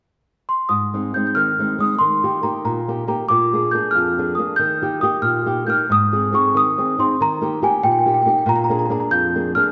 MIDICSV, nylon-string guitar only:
0, 0, Header, 1, 2, 480
1, 0, Start_track
1, 0, Key_signature, -4, "major"
1, 0, Tempo, 432900
1, 762, Time_signature, 6, 3, 24, 8
1, 10775, End_track
2, 0, Start_track
2, 0, Title_t, "Nylon-string guitar"
2, 0, Program_c, 0, 24
2, 769, Note_on_c, 0, 44, 47
2, 1039, Note_on_c, 0, 56, 32
2, 1044, Note_on_c, 0, 60, 29
2, 1048, Note_on_c, 0, 63, 33
2, 1246, Note_off_c, 0, 44, 0
2, 1266, Note_off_c, 0, 56, 0
2, 1272, Note_off_c, 0, 60, 0
2, 1277, Note_off_c, 0, 63, 0
2, 1280, Note_on_c, 0, 56, 31
2, 1285, Note_on_c, 0, 60, 27
2, 1290, Note_on_c, 0, 63, 41
2, 1508, Note_on_c, 0, 51, 44
2, 1665, Note_off_c, 0, 56, 0
2, 1668, Note_off_c, 0, 60, 0
2, 1671, Note_off_c, 0, 63, 0
2, 1761, Note_on_c, 0, 56, 29
2, 1770, Note_on_c, 0, 60, 22
2, 1775, Note_on_c, 0, 63, 33
2, 1967, Note_off_c, 0, 56, 0
2, 1976, Note_off_c, 0, 51, 0
2, 1980, Note_off_c, 0, 63, 0
2, 1981, Note_on_c, 0, 56, 35
2, 1982, Note_off_c, 0, 60, 0
2, 1994, Note_on_c, 0, 60, 24
2, 1997, Note_on_c, 0, 63, 34
2, 2166, Note_off_c, 0, 56, 0
2, 2174, Note_off_c, 0, 63, 0
2, 2175, Note_off_c, 0, 60, 0
2, 2224, Note_on_c, 0, 51, 44
2, 2472, Note_on_c, 0, 58, 33
2, 2481, Note_on_c, 0, 67, 38
2, 2483, Note_on_c, 0, 63, 26
2, 2682, Note_off_c, 0, 58, 0
2, 2692, Note_off_c, 0, 63, 0
2, 2692, Note_off_c, 0, 67, 0
2, 2694, Note_off_c, 0, 51, 0
2, 2695, Note_on_c, 0, 58, 37
2, 2704, Note_on_c, 0, 63, 31
2, 2706, Note_on_c, 0, 67, 37
2, 2934, Note_on_c, 0, 46, 40
2, 3089, Note_off_c, 0, 58, 0
2, 3095, Note_off_c, 0, 63, 0
2, 3095, Note_off_c, 0, 67, 0
2, 3194, Note_on_c, 0, 58, 25
2, 3201, Note_on_c, 0, 63, 28
2, 3201, Note_on_c, 0, 67, 33
2, 3397, Note_off_c, 0, 58, 0
2, 3398, Note_off_c, 0, 63, 0
2, 3402, Note_off_c, 0, 67, 0
2, 3407, Note_off_c, 0, 46, 0
2, 3409, Note_on_c, 0, 58, 38
2, 3413, Note_on_c, 0, 63, 27
2, 3415, Note_on_c, 0, 67, 35
2, 3599, Note_off_c, 0, 58, 0
2, 3600, Note_off_c, 0, 63, 0
2, 3602, Note_off_c, 0, 67, 0
2, 3658, Note_on_c, 0, 46, 55
2, 3912, Note_on_c, 0, 62, 31
2, 3917, Note_on_c, 0, 58, 31
2, 3922, Note_on_c, 0, 68, 39
2, 4128, Note_off_c, 0, 46, 0
2, 4136, Note_off_c, 0, 58, 0
2, 4136, Note_off_c, 0, 62, 0
2, 4141, Note_off_c, 0, 68, 0
2, 4148, Note_on_c, 0, 58, 35
2, 4152, Note_on_c, 0, 62, 31
2, 4155, Note_on_c, 0, 68, 46
2, 4374, Note_on_c, 0, 41, 43
2, 4535, Note_off_c, 0, 58, 0
2, 4535, Note_off_c, 0, 62, 0
2, 4538, Note_off_c, 0, 68, 0
2, 4638, Note_on_c, 0, 58, 30
2, 4641, Note_on_c, 0, 68, 34
2, 4644, Note_on_c, 0, 62, 30
2, 4844, Note_off_c, 0, 41, 0
2, 4848, Note_off_c, 0, 68, 0
2, 4850, Note_off_c, 0, 58, 0
2, 4850, Note_off_c, 0, 62, 0
2, 4861, Note_on_c, 0, 58, 36
2, 4865, Note_on_c, 0, 62, 31
2, 4866, Note_on_c, 0, 68, 36
2, 5044, Note_off_c, 0, 68, 0
2, 5045, Note_off_c, 0, 58, 0
2, 5045, Note_off_c, 0, 62, 0
2, 5092, Note_on_c, 0, 51, 54
2, 5342, Note_on_c, 0, 58, 36
2, 5349, Note_on_c, 0, 63, 35
2, 5350, Note_on_c, 0, 67, 36
2, 5562, Note_off_c, 0, 67, 0
2, 5564, Note_off_c, 0, 51, 0
2, 5565, Note_off_c, 0, 58, 0
2, 5567, Note_off_c, 0, 63, 0
2, 5577, Note_on_c, 0, 58, 41
2, 5578, Note_on_c, 0, 67, 46
2, 5580, Note_on_c, 0, 63, 39
2, 5786, Note_on_c, 0, 46, 46
2, 5969, Note_off_c, 0, 67, 0
2, 5971, Note_off_c, 0, 58, 0
2, 5972, Note_off_c, 0, 63, 0
2, 6051, Note_on_c, 0, 58, 32
2, 6056, Note_on_c, 0, 63, 31
2, 6063, Note_on_c, 0, 67, 42
2, 6275, Note_off_c, 0, 46, 0
2, 6275, Note_off_c, 0, 58, 0
2, 6281, Note_off_c, 0, 63, 0
2, 6286, Note_off_c, 0, 67, 0
2, 6289, Note_on_c, 0, 58, 39
2, 6294, Note_on_c, 0, 63, 36
2, 6299, Note_on_c, 0, 67, 40
2, 6480, Note_off_c, 0, 58, 0
2, 6483, Note_off_c, 0, 63, 0
2, 6486, Note_off_c, 0, 67, 0
2, 6539, Note_on_c, 0, 44, 50
2, 6784, Note_on_c, 0, 60, 39
2, 6790, Note_on_c, 0, 63, 31
2, 6797, Note_on_c, 0, 68, 43
2, 6998, Note_off_c, 0, 60, 0
2, 7009, Note_off_c, 0, 63, 0
2, 7011, Note_on_c, 0, 60, 39
2, 7012, Note_off_c, 0, 44, 0
2, 7014, Note_off_c, 0, 68, 0
2, 7023, Note_on_c, 0, 63, 39
2, 7027, Note_on_c, 0, 68, 37
2, 7253, Note_on_c, 0, 51, 39
2, 7405, Note_off_c, 0, 60, 0
2, 7412, Note_off_c, 0, 63, 0
2, 7415, Note_off_c, 0, 68, 0
2, 7515, Note_on_c, 0, 60, 33
2, 7521, Note_on_c, 0, 63, 31
2, 7527, Note_on_c, 0, 68, 42
2, 7724, Note_off_c, 0, 51, 0
2, 7732, Note_off_c, 0, 63, 0
2, 7736, Note_off_c, 0, 60, 0
2, 7745, Note_off_c, 0, 68, 0
2, 7746, Note_on_c, 0, 63, 36
2, 7749, Note_on_c, 0, 60, 35
2, 7759, Note_on_c, 0, 68, 40
2, 7925, Note_off_c, 0, 63, 0
2, 7928, Note_off_c, 0, 60, 0
2, 7933, Note_off_c, 0, 68, 0
2, 7989, Note_on_c, 0, 51, 54
2, 8219, Note_on_c, 0, 58, 38
2, 8224, Note_on_c, 0, 63, 32
2, 8231, Note_on_c, 0, 67, 45
2, 8439, Note_off_c, 0, 63, 0
2, 8440, Note_off_c, 0, 58, 0
2, 8440, Note_off_c, 0, 67, 0
2, 8447, Note_off_c, 0, 51, 0
2, 8452, Note_on_c, 0, 58, 41
2, 8453, Note_on_c, 0, 63, 40
2, 8456, Note_on_c, 0, 67, 50
2, 8687, Note_on_c, 0, 46, 54
2, 8840, Note_off_c, 0, 58, 0
2, 8840, Note_off_c, 0, 63, 0
2, 8840, Note_off_c, 0, 67, 0
2, 8931, Note_on_c, 0, 58, 41
2, 8936, Note_on_c, 0, 63, 34
2, 8943, Note_on_c, 0, 67, 38
2, 9144, Note_off_c, 0, 58, 0
2, 9144, Note_off_c, 0, 63, 0
2, 9155, Note_off_c, 0, 46, 0
2, 9155, Note_off_c, 0, 67, 0
2, 9157, Note_on_c, 0, 58, 37
2, 9159, Note_on_c, 0, 63, 39
2, 9168, Note_on_c, 0, 67, 41
2, 9345, Note_off_c, 0, 58, 0
2, 9345, Note_off_c, 0, 63, 0
2, 9352, Note_off_c, 0, 67, 0
2, 9379, Note_on_c, 0, 46, 66
2, 9640, Note_on_c, 0, 58, 43
2, 9642, Note_on_c, 0, 62, 37
2, 9656, Note_on_c, 0, 68, 48
2, 9848, Note_off_c, 0, 58, 0
2, 9854, Note_off_c, 0, 62, 0
2, 9860, Note_off_c, 0, 68, 0
2, 9861, Note_off_c, 0, 46, 0
2, 9861, Note_on_c, 0, 58, 50
2, 9868, Note_on_c, 0, 62, 44
2, 9874, Note_on_c, 0, 68, 49
2, 10101, Note_on_c, 0, 41, 50
2, 10261, Note_off_c, 0, 58, 0
2, 10265, Note_off_c, 0, 62, 0
2, 10268, Note_off_c, 0, 68, 0
2, 10371, Note_on_c, 0, 58, 35
2, 10376, Note_on_c, 0, 62, 33
2, 10380, Note_on_c, 0, 68, 35
2, 10581, Note_off_c, 0, 41, 0
2, 10585, Note_off_c, 0, 58, 0
2, 10590, Note_off_c, 0, 62, 0
2, 10592, Note_off_c, 0, 68, 0
2, 10598, Note_on_c, 0, 58, 35
2, 10601, Note_on_c, 0, 62, 31
2, 10609, Note_on_c, 0, 68, 48
2, 10775, Note_off_c, 0, 58, 0
2, 10775, Note_off_c, 0, 62, 0
2, 10775, Note_off_c, 0, 68, 0
2, 10775, End_track
0, 0, End_of_file